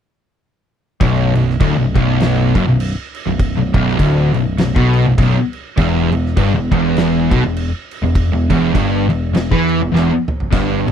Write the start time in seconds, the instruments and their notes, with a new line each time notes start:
1.01 picked electric bass B0, distorted electric guitar B1, kick, crash
1.35 picked electric bass B0, distorted electric guitar B1, crash
1.50 snare
1.60 picked electric bass D1, distorted electric guitar D2, kick, crash
1.77 picked electric bass B0, distorted electric guitar B1
1.95 picked electric bass B0, distorted electric guitar B1, kick, crash
2.20 snare, crash
2.54 picked electric bass F#1, distorted electric guitar F#2, kick, crash
2.67 picked electric bass B0, distorted electric guitar B1
2.80 crash
3.14 crash
3.27 picked electric bass B0, distorted electric guitar B1
3.39 kick, crash
3.57 picked electric bass B0, distorted electric guitar B1
3.74 picked electric bass B0, distorted electric guitar B1, kick, crash
3.88 snare
3.99 picked electric bass D1, distorted electric guitar D2, kick, crash
4.33 distorted electric guitar B1, crash
4.58 picked electric bass B0, distorted electric guitar B1, snare, crash
4.76 picked electric bass B1, distorted electric guitar B2, kick
4.94 crash
5.06 picked electric bass B0, distorted electric guitar B1
5.18 picked electric bass B0, distorted electric guitar B1, kick, crash
5.53 crash
5.77 picked electric bass E1, distorted electric guitar E2, kick, crash
6.12 picked electric bass E1, distorted electric guitar E2, crash
6.26 snare
6.37 picked electric bass G1, distorted electric guitar G2, kick, crash
6.54 picked electric bass E1, distorted electric guitar E2
6.71 picked electric bass E1, distorted electric guitar E2, kick, crash
6.97 snare, crash
7.31 picked electric bass B1, distorted electric guitar B2, kick, crash
7.43 picked electric bass E1, distorted electric guitar E2
7.56 crash
7.91 crash
8.02 picked electric bass E1, distorted electric guitar E2
8.15 kick, crash
8.32 picked electric bass E1, distorted electric guitar E2
8.50 picked electric bass E1, distorted electric guitar E2, kick, crash
8.74 picked electric bass G1, distorted electric guitar G2, kick, crash
9.09 picked electric bass E1, distorted electric guitar E2, crash
9.33 picked electric bass E1, distorted electric guitar E2, snare, crash
9.50 picked electric bass E2, distorted electric guitar E3, kick
9.69 crash
9.80 picked electric bass E1, distorted electric guitar E2
9.92 picked electric bass E1, distorted electric guitar E2, snare
10.28 mid tom
10.40 floor tom
10.51 picked electric bass G1, distorted electric guitar G2, kick, splash, crash
10.86 picked electric bass G1, distorted electric guitar G2, crash